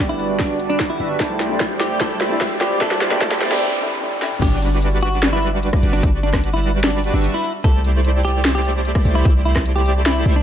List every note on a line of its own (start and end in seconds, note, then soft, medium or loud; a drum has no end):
0.00 0.98 G1 medium
0.00 0.97 G3 medium
0.00 1.17 G3 medium
0.00 1.20 A3 medium
0.00 1.22 B3 medium
0.00 0.97 D4 medium
0.00 1.20 D4 medium
0.00 0.97 F#4 medium
0.00 1.22 F#4 medium
0.00 0.97 B4 medium
0.00 0.97 D5 medium
0.00 riser medium
0.09 0.27 E4 loud
0.19 closed hi-hat medium
0.39 0.57 D4 medium
0.39 kick loud
0.39 snare medium
0.39 closed hi-hat medium
0.60 closed hi-hat medium
0.70 0.81 D4 medium
0.80 kick medium
0.80 snare medium
0.80 closed hi-hat medium
0.90 1.07 E4 loud
1.00 1.18 G1 loud
1.00 1.16 G3 medium
1.00 1.16 D4 medium
1.00 1.16 F#4 medium
1.00 1.16 B4 medium
1.00 1.16 E5 medium
1.00 closed hi-hat medium
1.19 1.98 C2 medium
1.19 1.47 G3 medium
1.19 1.48 A3 medium
1.19 1.99 A3 medium
1.19 1.48 D4 medium
1.19 1.99 E4 medium
1.19 1.48 E4 medium
1.19 1.99 G4 medium
1.19 1.38 A4 medium
1.19 1.99 C5 medium
1.19 1.99 D5 medium
1.19 kick medium
1.19 snare medium
1.19 closed hi-hat medium
1.40 snare medium
1.40 closed hi-hat medium
1.48 1.98 G3 medium
1.48 1.99 A3 medium
1.48 1.99 D4 medium
1.52 2.00 E4 medium
1.60 kick loud
1.60 snare medium
1.60 closed hi-hat medium
1.80 1.98 G4 medium
1.80 snare medium
1.80 closed hi-hat medium
1.99 2.79 C2 loud
1.99 2.27 G3 medium
1.99 2.28 A3 medium
1.99 2.79 A3 medium
1.99 2.28 D4 medium
1.99 2.79 E4 medium
1.99 2.29 E4 medium
1.99 2.79 G4 medium
1.99 2.18 A4 medium
1.99 2.79 C5 medium
1.99 2.79 D5 medium
1.99 kick loud
1.99 snare medium
1.99 closed hi-hat medium
2.21 snare medium
2.21 closed hi-hat medium
2.29 2.78 G3 medium
2.29 2.79 A3 medium
2.29 2.80 D4 medium
2.29 2.80 E4 medium
2.41 kick medium
2.41 snare medium
2.41 closed hi-hat medium
2.61 2.78 G4 medium
2.61 snare medium
2.61 closed hi-hat medium
2.80 3.19 C2 loud
2.80 3.08 G3 medium
2.80 3.09 A3 medium
2.80 3.20 A3 medium
2.80 3.09 D4 medium
2.80 3.20 E4 medium
2.80 3.09 E4 medium
2.80 3.20 G4 medium
2.80 2.99 A4 loud
2.80 3.20 C5 medium
2.80 3.20 D5 medium
2.80 kick loud
2.80 snare medium
2.80 closed hi-hat medium
2.80 noise sweep medium
2.91 snare medium
3.01 snare medium
3.01 closed hi-hat medium
3.09 3.19 G3 medium
3.09 3.19 A3 medium
3.09 3.20 D4 medium
3.09 snare medium
3.13 3.21 E4 medium
3.20 3.60 C2 loud
3.20 3.48 G3 medium
3.20 3.49 A3 medium
3.20 3.60 A3 medium
3.20 3.49 D4 medium
3.20 3.60 E4 medium
3.20 3.50 E4 medium
3.20 3.60 G4 medium
3.20 3.39 A4 loud
3.20 3.60 C5 medium
3.20 3.60 D5 medium
3.20 kick loud
3.20 snare loud
3.20 closed hi-hat medium
3.31 snare medium
3.41 snare medium
3.41 closed hi-hat medium
3.50 3.59 G3 medium
3.50 3.60 A3 medium
3.50 3.60 D4 medium
3.50 3.61 E4 medium
3.50 snare medium
3.60 3.79 G3 medium
3.60 3.80 A3 medium
3.60 3.80 D4 medium
3.60 3.81 E4 medium
3.81 3.99 G3 medium
3.81 4.00 A3 medium
3.81 4.00 D4 medium
3.81 4.01 E4 medium
4.01 4.20 G3 medium
4.01 4.20 A3 medium
4.01 4.21 D4 medium
4.01 4.21 E4 medium
4.21 4.40 G3 medium
4.21 4.40 A3 medium
4.21 4.41 D4 medium
4.21 4.41 E4 medium
4.21 snare medium
4.32 mid tom medium
4.42 5.81 G1 loud
4.42 5.81 G3 medium
4.42 5.81 D4 medium
4.42 5.81 F#4 medium
4.42 4.60 G4 loud
4.42 5.81 B4 medium
4.42 5.81 D5 medium
4.42 kick loud
4.42 closed hi-hat medium
4.42 crash loud
4.62 closed hi-hat medium
4.82 closed hi-hat medium
5.03 5.20 F#4 medium
5.03 closed hi-hat medium
5.23 snare loud
5.23 closed hi-hat medium
5.33 5.50 E4 loud
5.43 closed hi-hat medium
5.63 closed hi-hat medium
5.73 kick loud
5.73 cross-stick medium
5.83 6.01 G1 loud
5.83 6.01 G3 medium
5.83 6.01 D4 medium
5.83 6.01 F#4 medium
5.83 6.01 B4 medium
5.83 6.01 D5 medium
5.83 closed hi-hat medium
5.93 6.11 D4 medium
6.03 7.12 G1 loud
6.03 7.12 G3 medium
6.03 7.12 D4 medium
6.03 7.12 F#4 medium
6.03 7.12 B4 medium
6.03 7.12 D5 medium
6.03 kick loud
6.03 closed hi-hat medium
6.23 6.41 D4 medium
6.23 closed hi-hat medium
6.33 kick medium
6.33 cross-stick medium
6.33 snare soft
6.43 closed hi-hat medium
6.54 6.71 E4 loud
6.64 closed hi-hat medium
6.84 7.01 D4 medium
6.84 snare loud
6.84 closed hi-hat medium
7.04 closed hi-hat medium
7.14 7.28 G1 medium
7.14 7.30 G3 medium
7.14 7.26 D4 medium
7.14 7.30 D4 medium
7.14 7.30 F#4 medium
7.14 7.30 B4 medium
7.14 7.30 E5 medium
7.24 closed hi-hat medium
7.34 7.52 E4 medium
7.44 closed hi-hat medium
7.64 9.03 C2 medium
7.64 9.03 A3 medium
7.64 9.03 E4 medium
7.64 9.03 G4 medium
7.64 7.82 A4 loud
7.64 9.03 C5 medium
7.64 9.03 D5 medium
7.64 kick loud
7.64 closed hi-hat medium
7.84 closed hi-hat medium
8.04 closed hi-hat medium
8.25 8.42 G4 loud
8.25 closed hi-hat medium
8.45 snare loud
8.45 closed hi-hat medium
8.55 8.72 G4 loud
8.65 closed hi-hat medium
8.85 closed hi-hat medium
8.95 kick loud
8.95 cross-stick medium
9.05 9.23 C2 loud
9.05 9.23 A3 medium
9.05 9.23 E4 medium
9.05 9.23 G4 medium
9.05 9.23 C5 medium
9.05 9.23 D5 loud
9.05 closed hi-hat medium
9.15 9.33 E4 medium
9.25 10.24 C2 medium
9.25 10.24 A3 medium
9.25 10.24 E4 medium
9.25 10.24 G4 medium
9.25 10.24 C5 medium
9.25 10.24 D5 medium
9.25 kick loud
9.25 closed hi-hat medium
9.45 9.63 E4 medium
9.45 closed hi-hat medium
9.56 kick medium
9.56 cross-stick medium
9.56 snare soft
9.66 closed hi-hat medium
9.76 9.93 G4 medium
9.86 closed hi-hat medium
10.06 10.23 E4 medium
10.06 snare loud
10.06 closed hi-hat medium
10.26 10.43 C2 loud
10.26 10.43 A3 medium
10.26 10.43 E4 medium
10.26 10.43 G4 medium
10.26 10.43 C5 medium
10.26 10.43 E5 loud
10.26 closed hi-hat medium
10.36 10.43 D4 medium